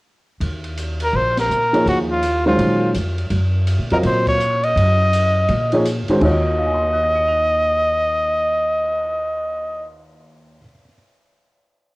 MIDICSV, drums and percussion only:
0, 0, Header, 1, 3, 480
1, 0, Start_track
1, 0, Tempo, 362319
1, 537, Time_signature, 4, 2, 24, 8
1, 15831, End_track
2, 0, Start_track
2, 0, Title_t, "Cymbal swell"
2, 8539, Note_on_c, 9, 59, 40
2, 11959, Note_off_c, 9, 59, 0
2, 15831, End_track
3, 0, Start_track
3, 0, Title_t, "Drums"
3, 541, Note_on_c, 9, 51, 51
3, 674, Note_off_c, 9, 51, 0
3, 845, Note_on_c, 9, 51, 41
3, 977, Note_off_c, 9, 51, 0
3, 1024, Note_on_c, 9, 44, 51
3, 1024, Note_on_c, 9, 51, 61
3, 1157, Note_off_c, 9, 44, 0
3, 1157, Note_off_c, 9, 51, 0
3, 1323, Note_on_c, 9, 51, 58
3, 1455, Note_off_c, 9, 51, 0
3, 1818, Note_on_c, 9, 38, 67
3, 1818, Note_on_c, 9, 51, 58
3, 1951, Note_off_c, 9, 38, 0
3, 1951, Note_off_c, 9, 51, 0
3, 1998, Note_on_c, 9, 44, 60
3, 2130, Note_off_c, 9, 44, 0
3, 2303, Note_on_c, 9, 51, 45
3, 2436, Note_off_c, 9, 51, 0
3, 2480, Note_on_c, 9, 51, 50
3, 2612, Note_off_c, 9, 51, 0
3, 2947, Note_on_c, 9, 44, 47
3, 2947, Note_on_c, 9, 51, 63
3, 3079, Note_off_c, 9, 44, 0
3, 3079, Note_off_c, 9, 51, 0
3, 3426, Note_on_c, 9, 51, 58
3, 3558, Note_off_c, 9, 51, 0
3, 3898, Note_on_c, 9, 44, 53
3, 3898, Note_on_c, 9, 51, 67
3, 4031, Note_off_c, 9, 44, 0
3, 4031, Note_off_c, 9, 51, 0
3, 4212, Note_on_c, 9, 51, 42
3, 4345, Note_off_c, 9, 51, 0
3, 4374, Note_on_c, 9, 51, 55
3, 4506, Note_off_c, 9, 51, 0
3, 4861, Note_on_c, 9, 44, 49
3, 4861, Note_on_c, 9, 51, 62
3, 4993, Note_off_c, 9, 44, 0
3, 4993, Note_off_c, 9, 51, 0
3, 5170, Note_on_c, 9, 51, 40
3, 5303, Note_off_c, 9, 51, 0
3, 5341, Note_on_c, 9, 51, 54
3, 5473, Note_off_c, 9, 51, 0
3, 5654, Note_on_c, 9, 36, 71
3, 5656, Note_on_c, 9, 51, 65
3, 5787, Note_off_c, 9, 36, 0
3, 5788, Note_off_c, 9, 51, 0
3, 5827, Note_on_c, 9, 44, 64
3, 5960, Note_off_c, 9, 44, 0
3, 6138, Note_on_c, 9, 51, 44
3, 6271, Note_off_c, 9, 51, 0
3, 6321, Note_on_c, 9, 51, 58
3, 6453, Note_off_c, 9, 51, 0
3, 6794, Note_on_c, 9, 44, 57
3, 6794, Note_on_c, 9, 51, 69
3, 6927, Note_off_c, 9, 44, 0
3, 6927, Note_off_c, 9, 51, 0
3, 7265, Note_on_c, 9, 51, 50
3, 7398, Note_off_c, 9, 51, 0
3, 7574, Note_on_c, 9, 51, 41
3, 7706, Note_off_c, 9, 51, 0
3, 7753, Note_on_c, 9, 44, 65
3, 7753, Note_on_c, 9, 51, 60
3, 7885, Note_off_c, 9, 44, 0
3, 7885, Note_off_c, 9, 51, 0
3, 8053, Note_on_c, 9, 51, 43
3, 8186, Note_off_c, 9, 51, 0
3, 8228, Note_on_c, 9, 49, 59
3, 8230, Note_on_c, 9, 36, 53
3, 8361, Note_off_c, 9, 49, 0
3, 8362, Note_off_c, 9, 36, 0
3, 15831, End_track
0, 0, End_of_file